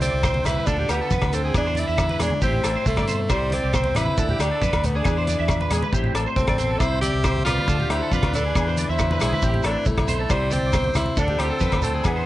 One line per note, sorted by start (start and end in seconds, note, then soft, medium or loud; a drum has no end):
0.00 0.11 C2 medium
0.00 0.65 C3 medium
0.00 0.48 C4 loud
0.00 0.65 E4 medium
0.00 0.65 G4 medium
0.00 0.23 C5 medium
0.00 0.22 D5 medium
0.00 closed hi-hat soft
0.00 high conga medium
0.00 shekere medium
0.13 0.43 C2 medium
0.23 0.44 C5 medium
0.23 0.65 C5 medium
0.23 kick medium
0.23 cross-stick medium
0.23 high conga medium
0.23 low agogo medium
0.23 shekere loud
0.34 high conga medium
0.44 0.56 C2 medium
0.44 0.67 G3 medium
0.44 0.68 E4 loud
0.44 0.66 B4 medium
0.44 cross-stick medium
0.44 closed hi-hat soft
0.44 low conga medium
0.44 low agogo medium
0.44 shekere medium
0.55 high conga medium
0.66 0.88 D2 medium
0.66 1.31 D3 medium
0.66 0.91 D4 loud
0.66 1.52 D4 medium
0.66 0.89 F4 medium
0.66 0.78 A4 medium
0.66 1.55 A4 medium
0.66 kick medium
0.66 shekere loud
0.77 0.88 G4 medium
0.77 low conga medium
0.89 1.00 D2 medium
0.89 1.36 B3 medium
0.89 1.53 F4 medium
0.89 1.00 G4 medium
0.89 cross-stick medium
0.89 closed hi-hat soft
0.89 low agogo medium
0.89 shekere medium
1.01 1.11 A4 medium
1.10 1.22 F2 loud
1.10 1.33 C3 medium
1.10 1.32 B4 medium
1.10 kick medium
1.10 shekere medium
1.21 1.53 D2 medium
1.21 kick medium
1.21 cross-stick medium
1.21 high conga medium
1.21 low agogo medium
1.32 1.54 D3 medium
1.32 1.55 C4 medium
1.32 1.44 A4 medium
1.32 closed hi-hat soft
1.32 shekere medium
1.44 1.65 G#4 medium
1.54 1.86 E2 medium
1.54 2.40 E3 medium
1.54 1.76 D4 medium
1.54 1.81 D4 loud
1.54 2.40 G#4 medium
1.54 2.41 B4 medium
1.54 kick medium
1.54 cross-stick medium
1.54 low agogo medium
1.54 shekere medium
1.66 1.76 C5 medium
1.75 1.98 D4 medium
1.75 1.87 D5 medium
1.75 closed hi-hat medium
1.75 high conga medium
1.75 shekere medium
1.79 2.22 E4 loud
1.87 2.19 E2 medium
1.87 2.08 E5 medium
1.97 2.40 D4 medium
1.97 kick medium
1.97 cross-stick medium
1.97 high conga medium
1.97 low agogo medium
1.97 shekere medium
2.09 2.20 B4 medium
2.09 high conga medium
2.19 2.31 E2 medium
2.19 2.40 G#3 medium
2.19 2.42 D4 loud
2.19 2.31 G#4 medium
2.19 cross-stick medium
2.19 closed hi-hat medium
2.19 low conga medium
2.19 low agogo medium
2.19 shekere medium
2.30 high conga medium
2.42 2.63 A1 medium
2.42 2.85 A2 medium
2.42 3.30 C4 medium
2.42 2.84 C4 loud
2.42 2.63 E4 medium
2.42 2.63 G4 medium
2.42 3.28 C5 medium
2.42 kick medium
2.42 shekere loud
2.53 low conga medium
2.63 2.75 A1 loud
2.63 3.29 E4 medium
2.63 2.75 A4 medium
2.63 cross-stick medium
2.63 closed hi-hat medium
2.63 low agogo medium
2.63 shekere medium
2.75 2.96 C5 medium
2.86 2.97 C2 loud
2.86 3.08 A2 medium
2.86 3.34 A3 medium
2.86 kick medium
2.86 shekere medium
2.96 3.28 G2 medium
2.96 3.07 D5 medium
2.96 kick medium
2.96 cross-stick medium
2.96 high conga medium
2.96 low agogo medium
3.07 3.29 B2 medium
3.07 3.19 C5 medium
3.07 closed hi-hat medium
3.07 shekere medium
3.29 3.61 C2 medium
3.29 3.73 C3 medium
3.29 3.56 G3 loud
3.29 3.51 E4 medium
3.29 3.52 G4 medium
3.29 3.51 C5 medium
3.29 4.16 C5 medium
3.29 kick medium
3.29 cross-stick medium
3.29 low agogo medium
3.29 shekere medium
3.50 3.63 E4 medium
3.50 3.73 D5 medium
3.50 closed hi-hat soft
3.50 high conga medium
3.54 3.98 C4 medium
3.63 3.94 C2 medium
3.63 4.17 G4 soft
3.73 3.95 B2 medium
3.73 3.95 C5 medium
3.73 kick medium
3.73 cross-stick medium
3.73 high conga medium
3.73 low agogo medium
3.73 shekere medium
3.84 high conga medium
3.95 4.06 A1 medium
3.95 4.17 C3 medium
3.95 4.43 E4 loud
3.95 4.17 B4 medium
3.95 cross-stick medium
3.95 closed hi-hat medium
3.95 low conga medium
3.95 low agogo medium
3.95 shekere medium
4.06 high conga medium
4.17 4.38 D2 medium
4.17 5.05 D3 medium
4.17 5.03 D4 medium
4.17 4.28 A4 medium
4.17 kick medium
4.17 shekere loud
4.29 4.38 G4 medium
4.29 low conga medium
4.39 4.50 D2 medium
4.39 4.87 D4 medium
4.39 4.50 G4 medium
4.39 4.61 A4 medium
4.39 cross-stick medium
4.39 closed hi-hat soft
4.39 low agogo medium
4.39 shekere medium
4.51 4.61 A4 medium
4.61 4.72 F2 loud
4.61 5.05 A4 medium
4.61 4.82 B4 medium
4.61 kick medium
4.61 shekere medium
4.73 5.03 D2 medium
4.73 kick medium
4.73 cross-stick medium
4.73 high conga medium
4.73 low agogo medium
4.83 5.03 A3 medium
4.83 4.98 B3 medium
4.83 closed hi-hat soft
4.83 low conga medium
4.83 shekere medium
4.95 5.99 D4 medium
4.95 5.16 G#4 medium
5.04 5.36 E2 medium
5.04 5.49 E3 medium
5.04 5.90 D4 medium
5.04 5.27 G#4 medium
5.04 5.91 B4 medium
5.04 kick medium
5.04 cross-stick medium
5.04 low agogo medium
5.04 shekere medium
5.17 5.27 C5 medium
5.27 5.91 G#4 medium
5.27 5.38 D5 medium
5.27 closed hi-hat soft
5.27 high conga medium
5.27 shekere medium
5.39 5.69 E2 medium
5.39 5.59 E5 medium
5.48 5.71 F3 medium
5.48 kick medium
5.48 cross-stick medium
5.48 low agogo medium
5.48 shekere medium
5.61 5.70 B4 medium
5.61 high conga medium
5.70 5.82 E2 medium
5.70 5.93 G#3 medium
5.70 5.82 G#4 medium
5.70 cross-stick medium
5.70 closed hi-hat medium
5.70 low conga medium
5.70 low agogo medium
5.70 shekere medium
5.82 5.92 B4 medium
5.82 high conga medium
5.93 6.13 A1 medium
5.93 6.36 A2 medium
5.93 6.81 C4 medium
5.93 6.15 E4 medium
5.93 6.14 G4 medium
5.93 6.79 C5 medium
5.93 kick medium
5.93 shekere loud
6.04 low conga medium
6.14 6.25 A1 medium
6.14 6.25 A4 medium
6.14 muted clean electric guitar stroke medium
6.14 cross-stick medium
6.14 closed hi-hat soft
6.14 low agogo medium
6.14 shekere medium
6.26 6.47 C5 medium
6.36 6.47 C2 loud
6.36 6.59 A2 medium
6.36 6.81 C4 medium
6.36 6.82 A4 medium
6.36 kick medium
6.36 shekere medium
6.47 6.78 A1 medium
6.47 6.58 D5 medium
6.47 kick medium
6.47 cross-stick medium
6.47 high conga medium
6.47 low agogo medium
6.58 6.80 B2 medium
6.58 6.69 C5 medium
6.58 closed hi-hat medium
6.58 low conga medium
6.58 shekere medium
6.70 6.79 A4 medium
6.79 7.12 C2 medium
6.79 7.65 C3 medium
6.79 7.02 C4 medium
6.79 7.01 E4 loud
6.79 7.01 C5 medium
6.79 7.02 C5 medium
6.79 kick medium
6.79 cross-stick medium
6.79 low agogo medium
6.79 shekere medium
7.01 7.24 C4 medium
7.01 7.42 G4 loud
7.01 7.22 D5 medium
7.01 7.43 E5 medium
7.01 closed hi-hat medium
7.01 high conga medium
7.01 shekere medium
7.14 7.44 C2 medium
7.24 7.68 C4 medium
7.24 7.44 C5 medium
7.24 kick medium
7.24 cross-stick medium
7.24 high conga medium
7.24 low agogo medium
7.24 shekere medium
7.36 high conga medium
7.45 7.56 C2 medium
7.45 7.67 G3 medium
7.45 7.92 F4 loud
7.45 7.66 B4 medium
7.45 7.92 D5 medium
7.45 cross-stick medium
7.45 closed hi-hat medium
7.45 low conga medium
7.45 low agogo medium
7.45 shekere medium
7.58 high conga medium
7.67 7.88 D2 medium
7.67 8.32 D3 medium
7.67 7.89 D4 soft
7.67 7.79 A4 medium
7.67 kick medium
7.67 shekere loud
7.80 7.89 G4 medium
7.80 low conga medium
7.89 8.00 D2 medium
7.89 8.53 D4 medium
7.89 8.13 E4 loud
7.89 8.01 G4 medium
7.89 8.14 C5 medium
7.89 cross-stick medium
7.89 closed hi-hat soft
7.89 low agogo medium
8.02 8.11 A4 medium
8.12 8.22 F2 medium
8.12 8.33 C3 medium
8.12 8.33 F4 loud
8.12 8.33 B4 medium
8.12 8.33 D5 medium
8.12 kick medium
8.12 shekere medium
8.23 8.53 D2 medium
8.23 kick medium
8.23 cross-stick medium
8.23 high conga medium
8.23 low agogo medium
8.33 8.55 D3 medium
8.33 8.91 D4 medium
8.33 8.45 A4 medium
8.33 8.93 B4 medium
8.33 closed hi-hat soft
8.33 low conga medium
8.33 shekere medium
8.46 8.66 G#4 medium
8.55 8.87 E2 medium
8.55 9.40 E3 medium
8.55 8.98 D4 medium
8.55 8.77 G#4 medium
8.55 kick medium
8.55 cross-stick medium
8.55 low agogo medium
8.55 shekere loud
8.68 8.77 C5 medium
8.77 9.41 G#4 medium
8.77 8.88 D5 medium
8.77 closed hi-hat medium
8.77 high conga medium
8.77 shekere medium
8.89 9.19 E2 medium
8.89 9.21 E4 medium
8.89 9.22 C5 medium
8.89 9.09 E5 medium
8.99 9.40 D4 medium
8.99 kick medium
8.99 cross-stick medium
8.99 high conga medium
8.99 low agogo medium
8.99 shekere loud
9.11 9.21 B4 medium
9.11 high conga medium
9.20 9.32 B1 medium
9.20 9.40 G#3 medium
9.20 9.67 E4 loud
9.20 9.32 G#4 medium
9.20 9.68 C5 medium
9.20 cross-stick medium
9.20 closed hi-hat medium
9.20 low conga medium
9.20 low agogo medium
9.20 shekere medium
9.33 9.42 B4 medium
9.33 high conga medium
9.42 9.63 A1 medium
9.42 9.85 A2 medium
9.42 10.29 C4 medium
9.42 9.64 G4 medium
9.42 kick medium
9.42 shekere loud
9.54 low conga medium
9.63 9.75 A1 medium
9.63 9.88 D4 medium
9.63 10.28 E4 medium
9.63 9.76 A4 medium
9.63 9.88 B4 medium
9.63 cross-stick medium
9.63 closed hi-hat soft
9.63 low agogo medium
9.63 shekere medium
9.85 9.97 C2 loud
9.85 10.07 A2 medium
9.85 10.32 A3 medium
9.85 10.31 E4 medium
9.85 kick medium
9.85 shekere medium
9.98 10.28 B1 medium
9.98 muted clean electric guitar stroke medium
9.98 kick medium
9.98 cross-stick medium
9.98 high conga medium
9.98 low agogo medium
10.08 10.28 B2 medium
10.08 10.19 C5 medium
10.08 closed hi-hat medium
10.08 low conga medium
10.08 shekere medium
10.19 10.29 A4 medium
10.28 10.61 C2 medium
10.28 10.73 C3 medium
10.28 10.54 G3 loud
10.28 11.14 E4 medium
10.28 10.54 E4 medium
10.28 10.50 G4 medium
10.28 10.50 C5 medium
10.28 11.15 C5 medium
10.28 kick medium
10.28 cross-stick medium
10.28 low agogo medium
10.28 shekere medium
10.51 10.96 C4 loud
10.51 11.14 G4 medium
10.51 10.96 G4 medium
10.51 10.72 D5 medium
10.51 closed hi-hat medium
10.51 high conga medium
10.51 shekere medium
10.63 10.93 C2 medium
10.73 10.94 B2 medium
10.73 10.94 C5 medium
10.73 kick medium
10.73 cross-stick medium
10.73 high conga medium
10.73 low agogo medium
10.73 shekere loud
10.84 high conga medium
10.94 11.06 C#2 medium
10.94 11.17 C3 medium
10.94 11.20 E4 medium
10.94 11.21 C5 medium
10.94 cross-stick medium
10.94 closed hi-hat medium
10.94 low conga medium
10.94 low agogo medium
10.94 shekere medium
11.06 high conga medium
11.17 11.38 D2 medium
11.17 12.04 D3 medium
11.17 12.02 D4 medium
11.17 11.41 D4 medium
11.17 11.37 F4 medium
11.17 11.28 A4 medium
11.17 11.61 A4 medium
11.17 11.42 A4 medium
11.17 kick medium
11.17 shekere medium
11.28 11.38 G4 medium
11.28 low conga medium
11.39 11.50 D2 medium
11.39 11.83 C4 medium
11.39 12.02 F4 medium
11.39 11.49 G4 medium
11.39 11.84 A4 medium
11.39 cross-stick medium
11.39 closed hi-hat soft
11.39 low agogo medium
11.50 11.60 A4 medium
11.60 11.72 F2 loud
11.60 12.05 A4 medium
11.60 11.81 B4 medium
11.60 kick medium
11.60 shekere medium
11.72 12.03 D2 medium
11.72 kick medium
11.72 cross-stick medium
11.72 high conga medium
11.72 low agogo medium
11.82 12.03 A3 medium
11.82 12.07 C4 medium
11.82 11.93 A4 medium
11.82 12.09 A4 medium
11.82 closed hi-hat soft
11.82 low conga medium
11.82 shekere medium
11.94 12.15 G#4 medium
12.04 12.26 E2 medium
12.04 12.26 E3 medium
12.04 12.26 B3 loud
12.04 12.26 D4 soft
12.04 12.26 G#4 medium
12.04 12.26 B4 medium
12.04 kick medium
12.04 cross-stick medium
12.04 low agogo medium
12.04 shekere loud
12.16 12.26 C5 medium